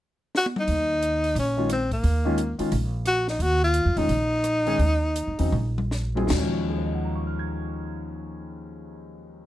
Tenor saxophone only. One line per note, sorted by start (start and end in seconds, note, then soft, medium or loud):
0.37 0.47 F#4 loud
0.59 1.34 D#4 medium
1.39 1.69 C#4 medium
1.72 1.92 C4 medium
1.93 2.56 A#3 medium
3.07 3.27 F#4 loud
3.29 3.44 D#4 medium
3.42 3.63 F#4 loud
3.64 3.99 F4 medium
3.98 5.92 D#4 medium